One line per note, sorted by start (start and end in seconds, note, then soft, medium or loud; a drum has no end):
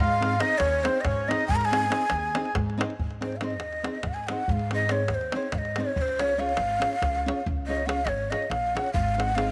0.00 0.36 G#2 loud
0.00 0.41 F4 loud
0.04 0.42 F5 loud
0.21 0.34 C4 medium
0.21 0.34 D#4 soft
0.21 0.35 G#4 medium
0.21 0.35 C5 medium
0.21 davul high medium
0.40 0.53 C4 medium
0.40 0.60 D#4 medium
0.40 0.54 D#4 medium
0.40 0.54 G#4 medium
0.40 0.54 C5 medium
0.40 0.60 D#5 loud
0.40 davul high medium
0.58 0.87 D#2 loud
0.58 0.85 C#4 medium
0.58 0.85 C#5 loud
0.58 davul high medium
0.83 0.97 C4 medium
0.83 1.04 C4 medium
0.83 0.98 D#4 medium
0.83 0.98 G#4 medium
0.83 1.02 C5 medium
0.83 0.98 C5 medium
0.83 davul high medium
1.01 1.30 C#4 medium
1.01 1.30 C#5 medium
1.01 1.06 D#5 medium
1.01 davul high medium
1.01 davul low medium
1.06 1.32 G#2 loud
1.28 1.42 C4 medium
1.28 1.48 D#4 medium
1.28 1.42 D#4 medium
1.28 1.43 G#4 soft
1.28 1.43 C5 medium
1.28 1.47 D#5 loud
1.28 davul high medium
1.41 davul high soft
1.48 1.86 G#2 loud
1.48 1.57 G#4 medium
1.48 1.57 G#5 loud
1.48 davul low medium
1.56 1.64 A#4 medium
1.56 1.61 A#5 loud
1.61 2.54 G#4 medium
1.61 1.66 A#5 loud
1.61 davul high soft
1.65 2.53 G#5 loud
1.72 1.84 C4 medium
1.72 1.84 D#4 medium
1.72 1.85 G#4 medium
1.72 1.85 C5 medium
1.72 davul high medium
1.83 davul high soft
1.90 2.03 C4 medium
1.90 2.03 D#4 medium
1.90 2.03 G#4 medium
1.90 2.04 C5 medium
1.90 davul high medium
2.01 davul high soft
2.10 2.37 D#2 loud
2.10 davul high medium
2.35 2.48 C4 medium
2.35 2.48 D#4 medium
2.35 2.48 G#4 medium
2.35 2.48 C5 medium
2.35 davul high medium
2.45 davul high soft
2.55 2.82 G#2 loud
2.55 davul high medium
2.55 davul low medium
2.70 davul high soft
2.77 2.91 C4 medium
2.77 2.92 D#4 medium
2.77 2.92 G#4 medium
2.77 2.93 C5 medium
2.77 davul high medium
2.90 davul high soft
2.99 3.60 G#2 medium
2.99 davul low medium
3.11 davul high soft
3.21 3.33 C4 soft
3.21 3.34 D#4 soft
3.21 3.34 G#4 soft
3.21 3.34 C5 medium
3.21 3.38 C5 medium
3.21 davul high medium
3.32 3.45 F5 soft
3.32 davul high soft
3.41 3.53 C4 medium
3.41 3.53 D#4 soft
3.41 3.54 G#4 medium
3.41 3.54 C5 medium
3.41 4.09 D#5 medium
3.41 davul high medium
3.50 davul high soft
3.60 3.86 D#2 medium
3.60 davul high medium
3.73 davul high soft
3.83 3.97 C4 medium
3.83 3.97 D#4 soft
3.83 3.97 G#4 soft
3.83 3.98 C5 medium
3.83 davul high medium
3.95 davul high soft
4.03 4.30 G#2 medium
4.03 davul high medium
4.03 davul low medium
4.08 4.16 F#5 medium
4.14 4.24 G#5 medium
4.14 davul high soft
4.24 4.53 F#5 medium
4.24 4.28 G#5 medium
4.28 4.42 C4 medium
4.28 4.42 D#4 medium
4.28 4.43 G#4 medium
4.28 4.43 C5 medium
4.28 davul high medium
4.48 5.10 G#2 loud
4.48 4.73 F5 medium
4.48 davul low medium
4.59 davul high soft
4.71 4.83 C4 medium
4.71 4.84 D#4 soft
4.71 4.84 G#4 soft
4.71 4.84 C5 medium
4.71 4.93 D#5 medium
4.71 davul high medium
4.80 davul high soft
4.89 5.02 C4 medium
4.89 5.02 D#4 medium
4.89 5.02 G#4 medium
4.89 5.03 C5 medium
4.89 5.10 C#5 medium
4.89 davul high medium
5.08 5.35 D#2 medium
5.08 5.16 C#5 medium
5.08 davul high medium
5.15 5.38 C5 medium
5.21 davul high soft
5.32 5.46 C4 medium
5.32 5.47 D#4 soft
5.32 5.47 G#4 soft
5.32 5.47 C5 medium
5.32 davul high medium
5.37 5.56 C#5 medium
5.43 davul high soft
5.52 5.80 G#2 medium
5.52 5.59 F5 medium
5.52 davul high medium
5.52 davul low medium
5.58 5.82 D#5 medium
5.65 davul high soft
5.76 5.91 C4 medium
5.76 5.91 D#4 medium
5.76 5.91 G#4 medium
5.76 5.92 C5 medium
5.76 davul high medium
5.81 5.98 C#5 medium
5.96 6.58 C#2 medium
5.96 6.03 C#5 medium
5.96 davul low medium
6.02 6.21 C5 medium
6.08 davul high soft
6.19 6.32 C#4 medium
6.19 6.32 F4 soft
6.19 6.33 G#4 medium
6.19 6.41 C#5 medium
6.19 6.33 C#5 medium
6.19 davul high medium
6.29 davul high soft
6.38 6.51 C#4 medium
6.38 6.51 F4 medium
6.38 6.52 G#4 medium
6.38 6.52 C#5 medium
6.38 7.47 F5 medium
6.49 davul high soft
6.57 6.84 G#1 medium
6.57 davul high medium
6.70 davul high soft
6.79 6.94 C#4 medium
6.79 6.94 F4 medium
6.79 6.95 G#4 soft
6.79 6.95 C#5 medium
6.79 davul high medium
6.93 davul high soft
7.02 7.29 C#2 medium
7.02 davul high medium
7.02 davul low medium
7.15 davul high soft
7.26 7.39 C#4 medium
7.26 7.40 F4 medium
7.26 7.40 G#4 medium
7.26 7.40 C#5 medium
7.26 davul high medium
7.46 8.07 C#2 loud
7.46 davul low medium
7.67 7.81 C#4 medium
7.67 7.81 F4 medium
7.67 7.81 G#4 soft
7.67 7.82 C#5 medium
7.67 7.88 D#5 medium
7.80 davul high soft
7.86 7.99 C#4 medium
7.86 8.00 F4 soft
7.86 8.00 G#4 medium
7.86 8.00 C#5 medium
7.86 8.07 F5 medium
7.86 7.91 F#5 medium
7.86 davul high medium
8.05 8.33 G#1 medium
8.05 8.32 C#5 medium
8.05 8.10 D#5 medium
8.05 davul high medium
8.30 8.44 C#4 medium
8.30 8.44 F4 soft
8.30 8.44 G#4 soft
8.30 8.45 C#5 medium
8.30 8.51 D#5 medium
8.30 davul high medium
8.42 davul high soft
8.50 8.77 A#1 medium
8.50 8.77 F5 medium
8.50 davul high medium
8.75 8.88 C#4 medium
8.75 8.89 F4 soft
8.75 8.89 G#4 soft
8.75 8.89 C#5 medium
8.75 8.93 F#5 medium
8.75 davul high medium
8.86 davul high soft
8.93 9.52 G#1 loud
8.93 9.16 F5 medium
8.93 davul low medium
9.08 davul high soft
9.15 9.29 C4 medium
9.15 9.30 D#4 soft
9.15 9.30 G#4 soft
9.15 9.30 C5 medium
9.15 9.37 F#5 medium
9.20 davul high medium
9.29 davul high soft
9.35 9.48 C4 medium
9.35 9.49 D#4 medium
9.35 9.49 G#4 medium
9.35 9.49 C5 medium
9.35 9.52 F5 medium
9.35 davul high medium
9.47 davul high soft